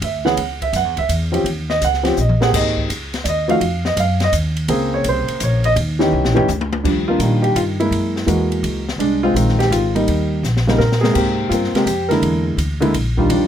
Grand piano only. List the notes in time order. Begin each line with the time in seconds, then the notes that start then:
0.04 E5
0.25 E3 B3 C#4 G#4 F#5
0.62 E5
0.76 F#5
0.98 E5
1.32 F3 C4 C#4 G4
1.70 D#5
1.84 F#5
2.03 F3 C4 C#4 G4
2.21 D#5
2.41 A#3 C4 G4 G#4 F#5
2.55 D#5
3.24 D5
3.29 D#5
3.48 F3 A3 D#4 F#4 F5
3.86 D#5
4.00 F5
4.24 D#5
4.68 C#3 A#3 C4 G#4
4.94 C#5
5.09 C5
5.43 C#5
5.65 D#5
5.99 E3 C#4 D#4 G4
6.34 E3 C#4 D#4 G4
6.83 F3 G3 D4
7.08 A#3 D4 F4
7.19 D#3 G3 D4 F4
7.42 G4
7.56 F4
7.80 G#3 A#3 E4
8.27 E3 G#3 A#3 F#4
8.99 G#3 D4
9.23 G#3 C4 F4
9.35 D#3 G#3 C4 F4
9.59 G4
9.72 F4
9.95 G3 A#3 D#4
10.67 C#3 G3 A#3 D#4
10.78 A#4
11.01 C3 G#3 A#3 G#4 A#4
11.13 A#3 C4 G4
11.49 C4 F4
11.53 A#3
11.75 C3 G#3 A#3 G4
11.84 G4
12.09 D3 G#3 A#3 D4 E4 A#4
12.80 D3 G#3 A#3 E4
13.17 D#3 G3 D4 F4
13.30 F3 G3 D4